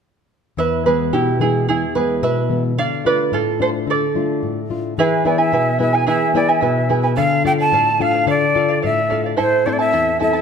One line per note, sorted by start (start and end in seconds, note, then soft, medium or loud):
0.57 1.11 E2 medium
0.57 0.85 B4 medium
0.57 0.84 E5 medium
0.86 1.30 E3 soft
0.86 1.30 G#3 soft
0.86 1.30 B3 soft
0.86 1.12 G#4 soft
0.86 1.12 B4 medium
1.13 1.67 B2 medium
1.13 1.39 E4 medium
1.13 1.41 G4 medium
1.40 1.84 E3 soft
1.40 1.85 G#3 soft
1.40 1.85 B3 soft
1.40 1.67 E4 soft
1.40 1.67 G#4 medium
1.68 2.22 E2 medium
1.68 1.95 E4 medium
1.68 1.95 G#4 medium
1.95 2.40 E3 soft
1.95 2.40 G#3 soft
1.95 2.40 B3 soft
1.95 2.22 G#4 soft
1.95 2.23 B4 medium
2.22 2.76 B2 medium
2.22 2.62 B4 medium
2.22 2.62 E5 medium
2.49 2.72 E3 soft
2.49 2.72 G#3 soft
2.49 2.72 B3 soft
2.78 3.31 D3 medium
2.78 3.04 D5 medium
2.78 3.06 F5 medium
3.05 3.49 A3 soft
3.05 3.50 D4 soft
3.05 3.50 F4 soft
3.05 3.32 B4 medium
3.05 3.34 D5 medium
3.32 3.86 A2 medium
3.32 3.59 F4 medium
3.32 3.61 A4 medium
3.59 4.04 A3 soft
3.59 4.04 D4 soft
3.59 4.05 F4 soft
3.59 3.69 A4 soft
3.59 3.69 C5 medium
3.87 4.41 D3 medium
3.87 4.68 A4 medium
3.87 4.68 D5 medium
4.15 4.59 A3 soft
4.15 4.60 D4 soft
4.15 4.60 F4 soft
4.43 4.96 A2 medium
4.70 4.92 A3 soft
4.70 4.93 D4 soft
4.70 4.93 F4 soft
4.98 5.52 E3 medium
4.98 5.24 E4 medium
4.98 5.26 G#4 medium
4.98 5.28 B4 medium
4.98 5.25 B4 medium
4.98 5.24 E5 medium
4.98 5.26 G#5 medium
5.24 5.69 B3 soft
5.24 5.69 E4 soft
5.24 5.38 E4 medium
5.24 5.69 G#4 medium
5.24 5.38 B4 medium
5.24 5.40 D5 medium
5.24 5.39 E5 soft
5.24 5.37 G#5 medium
5.38 5.52 E4 soft
5.38 5.52 B4 soft
5.38 5.80 E5 medium
5.38 5.53 G#5 soft
5.52 6.06 B2 medium
5.52 5.78 E4 medium
5.52 5.79 B4 medium
5.52 5.77 E5 soft
5.52 5.79 G#5 medium
5.78 6.24 B3 soft
5.78 5.93 E4 soft
5.78 6.24 E4 soft
5.78 6.25 G#4 soft
5.78 5.93 B4 soft
5.78 5.93 E5 soft
5.78 5.97 E5 medium
5.78 5.92 G#5 medium
5.93 6.06 E4 soft
5.93 6.06 B4 soft
5.93 6.07 G#5 soft
5.93 6.07 G#5 medium
6.07 6.61 E3 medium
6.07 6.34 E4 medium
6.07 6.35 G#4 medium
6.07 6.34 B4 medium
6.07 6.34 E5 medium
6.07 6.35 G#5 medium
6.34 6.79 B3 soft
6.34 6.79 E4 soft
6.34 6.48 E4 medium
6.34 6.79 G#4 medium
6.34 6.48 B4 medium
6.34 6.51 D5 medium
6.34 6.49 E5 medium
6.34 6.47 G#5 medium
6.49 6.60 E4 soft
6.49 6.61 B4 soft
6.49 6.91 E5 medium
6.49 6.61 G#5 medium
6.61 7.16 B2 medium
6.61 6.88 E4 medium
6.61 6.89 B4 medium
6.61 6.88 E5 medium
6.61 6.89 G#5 medium
6.89 7.12 B3 soft
6.89 7.04 E4 medium
6.89 7.13 E4 soft
6.89 7.13 G#4 soft
6.89 7.02 B4 medium
6.89 7.04 E5 soft
6.89 7.02 G#5 medium
7.03 7.16 E4 soft
7.03 7.16 B4 soft
7.03 7.18 G#5 soft
7.16 7.71 D3 medium
7.16 7.43 A4 medium
7.16 7.44 D5 medium
7.16 7.43 F5 medium
7.16 7.44 F5 medium
7.44 7.89 D4 soft
7.44 7.89 F4 soft
7.44 7.59 A4 medium
7.44 7.90 A4 soft
7.44 7.59 D5 medium
7.44 7.57 F5 medium
7.44 7.52 G5 medium
7.59 7.72 D5 soft
7.59 7.73 F5 soft
7.59 8.03 A5 medium
7.72 8.26 A2 medium
7.72 7.99 A4 medium
7.72 8.00 D5 medium
7.72 8.01 F5 medium
8.00 8.44 D4 soft
8.00 8.45 F4 soft
8.00 8.44 A4 soft
8.00 8.14 A4 medium
8.00 8.14 D5 soft
8.00 8.29 F5 medium
8.00 8.13 F5 medium
8.14 8.26 D5 soft
8.14 8.27 F5 soft
8.27 8.81 D3 medium
8.27 8.54 A4 medium
8.27 8.54 D5 medium
8.27 8.80 D5 medium
8.27 8.56 F5 medium
8.55 8.99 D4 soft
8.55 8.99 F4 soft
8.55 8.69 A4 medium
8.55 9.00 A4 medium
8.55 8.69 D5 soft
8.55 8.67 F5 medium
8.69 8.81 D5 soft
8.69 8.82 F5 soft
8.82 9.37 A2 medium
8.82 9.08 A4 medium
8.82 9.09 D5 medium
8.82 9.22 E5 medium
8.82 9.10 F5 medium
9.10 9.33 D4 soft
9.10 9.33 F4 soft
9.10 9.24 A4 soft
9.10 9.33 A4 soft
9.10 9.24 D5 medium
9.10 9.23 F5 medium
9.24 9.37 D5 soft
9.24 9.37 F5 soft
9.37 9.92 A2 medium
9.37 9.65 E4 medium
9.37 9.66 A4 medium
9.37 9.65 C5 medium
9.37 9.68 C5 medium
9.37 9.65 E5 medium
9.37 9.66 A5 medium
9.66 10.10 C4 soft
9.66 9.79 E4 soft
9.66 10.10 E4 soft
9.66 9.79 A4 medium
9.66 10.11 A4 medium
9.66 9.74 C5 medium
9.66 9.70 D5 medium
9.66 9.80 E5 soft
9.66 9.78 A5 medium
9.73 9.80 D5 medium
9.79 9.91 E4 soft
9.79 9.92 A4 soft
9.79 10.18 E5 medium
9.79 9.92 A5 soft
9.93 10.42 E2 medium
9.93 10.19 E4 medium
9.93 10.19 A4 medium
9.93 10.18 E5 soft
9.93 10.19 A5 medium
10.19 10.42 C4 soft
10.19 10.33 E4 soft
10.19 10.42 E4 soft
10.19 10.33 A4 medium
10.19 10.42 A4 soft
10.19 10.34 E5 soft
10.19 10.42 E5 medium
10.19 10.32 A5 medium
10.33 10.42 E4 soft
10.33 10.42 A4 soft
10.33 10.42 A5 soft